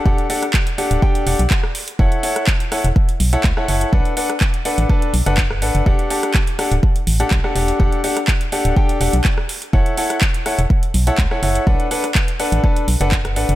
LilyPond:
<<
  \new Staff \with { instrumentName = "Grand piano" } { \time 4/4 \key e \dorian \tempo 4 = 124 <d' g' a' fis''>8 <d' g' a' fis''>16 r8. <d' g' a' fis''>8 <d' g' a' g''>8 <d' g' a' fis''>16 r4 r16 | <e' a' cis'' fis''>8 <e' a' cis'' fis''>8 r8 <e' a' cis'' fis''>16 r4 <e' a' cis'' fis''>16 r16 <e' a' cis'' fis''>16 <e' a' cis'' fis''>8 | <d' a' b' fis''>8 <d' a' b' fis''>16 r8. <d' a' b' fis''>8 <d' a' b' a''>8 r16 <d' a' b' fis''>16 r8 <d' a' b' fis''>8 | <d' g' a' fis''>8 <d' g' a' fis''>8 r8 <d' g' a' fis''>16 r4 <d' g' a' fis''>16 r16 <d' g' a' fis''>16 <d' g' a' fis''>8 |
<d' g' a' fis''>8 <d' g' a' fis''>16 r8. <d' g' a' fis''>8 <d' g' a' g''>8 <d' g' a' fis''>16 r4 r16 | <e' a' cis'' fis''>8 <e' a' cis'' fis''>8 r8 <e' a' cis'' fis''>16 r4 <e' a' cis'' fis''>16 r16 <e' a' cis'' fis''>16 <e' a' cis'' fis''>8 | <d' a' b' fis''>8 <d' a' b' fis''>16 r8. <d' a' b' fis''>8 <d' a' b' a''>8 r16 <d' a' b' fis''>16 r8 <d' a' b' fis''>8 | }
  \new Staff \with { instrumentName = "FM bass" } { \clef bass \time 4/4 \key e \dorian e,,16 r4. d,,16 r8 e,,16 b,,16 r4 | fis,,16 r4. e,,16 r8 b,,16 r16 cis,16 r16 fis,,16 r16 | b,,16 r4. a,,16 r8 b,,16 fis,,8. a,,16 fis,,16 | e,,16 r4. d,,16 r8 a,,16 r16 b,,16 r16 e,,16 r16 |
e,,16 r4. d,,16 r8 e,,16 b,,16 r4 | fis,,16 r4. e,,16 r8 b,,16 r16 cis,16 r16 fis,,16 r16 | b,,16 r4. a,,16 r8 b,,16 fis,,8. a,,16 fis,,16 | }
  \new DrumStaff \with { instrumentName = "Drums" } \drummode { \time 4/4 bd16 hh16 hho16 <hh ss>16 <hc bd>16 hh16 hho16 hh16 bd16 hh16 hho16 hh16 <hc bd>16 ss16 hho16 hh16 | bd16 hh16 hho16 <hh ss>16 <hc bd>16 hh16 <hho ss>16 hh16 bd16 hh16 hho16 hh16 <hc bd>16 ss16 hho16 hh16 | bd16 hh16 hho16 <hh ss>16 <hc bd>16 hh16 hho16 hh16 bd16 hh16 hho16 hh16 <hc bd>16 ss16 hho16 hh16 | bd16 hh16 hho16 <hh ss>16 <hc bd>16 hh16 <hho ss>16 hh16 bd16 hh16 hho16 hh16 <hc bd>16 ss16 hho16 hh16 |
bd16 hh16 hho16 <hh ss>16 <hc bd>16 hh16 hho16 hh16 bd16 hh16 hho16 hh16 <hc bd>16 ss16 hho16 hh16 | bd16 hh16 hho16 <hh ss>16 <hc bd>16 hh16 <hho ss>16 hh16 bd16 hh16 hho16 hh16 <hc bd>16 ss16 hho16 hh16 | bd16 hh16 hho16 <hh ss>16 <hc bd>16 hh16 hho16 hh16 bd16 hh16 hho16 hh16 <hc bd>16 <hh ss>16 hho16 hh16 | }
>>